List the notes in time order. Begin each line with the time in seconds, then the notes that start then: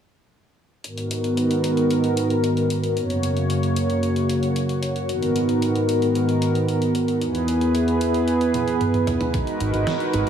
0.84 G#2 D#3 B3 F#4 A#4, closed hi-hat
0.98 closed hi-hat
1.11 closed hi-hat
1.24 closed hi-hat
1.37 closed hi-hat
1.51 closed hi-hat
1.64 closed hi-hat
1.77 closed hi-hat
1.91 closed hi-hat
2.04 closed hi-hat
2.17 closed hi-hat
2.30 closed hi-hat
2.44 closed hi-hat
2.57 closed hi-hat
2.70 closed hi-hat
2.84 closed hi-hat
2.97 F#2 C#3 A#3 F#4 C#5, closed hi-hat
3.10 closed hi-hat
3.23 closed hi-hat
3.37 closed hi-hat
3.50 closed hi-hat
3.63 closed hi-hat
3.76 closed hi-hat
3.90 closed hi-hat
4.03 closed hi-hat
4.16 closed hi-hat
4.29 closed hi-hat
4.43 closed hi-hat
4.56 closed hi-hat
4.69 closed hi-hat
4.83 closed hi-hat
4.96 closed hi-hat
5.09 G#2 D#3 B3 A#4, closed hi-hat
5.22 closed hi-hat
5.36 closed hi-hat
5.49 closed hi-hat
5.62 closed hi-hat
5.76 closed hi-hat
5.89 closed hi-hat
6.02 closed hi-hat
6.15 closed hi-hat
6.29 closed hi-hat
6.42 closed hi-hat
6.55 closed hi-hat
6.69 closed hi-hat
6.82 closed hi-hat
6.95 closed hi-hat
7.08 closed hi-hat
7.21 E2 E3 B3 G#4 B4, closed hi-hat
7.35 closed hi-hat
7.48 closed hi-hat
7.61 closed hi-hat
7.75 closed hi-hat
7.88 closed hi-hat
8.01 closed hi-hat
8.14 closed hi-hat
8.28 closed hi-hat
8.41 closed hi-hat
8.54 closed hi-hat, high tom
8.68 closed hi-hat
8.81 closed hi-hat, mid tom
8.94 closed hi-hat, mid tom
9.07 closed hi-hat, mid tom
9.21 closed hi-hat, mid tom
9.34 G#3 D#4 F#4 A#4 B4, kick, closed hi-hat
9.47 closed hi-hat
9.60 G#1, closed hi-hat
9.74 G#1, closed hi-hat
9.87 snare, closed hi-hat
10.00 closed hi-hat
10.13 G#1, closed hi-hat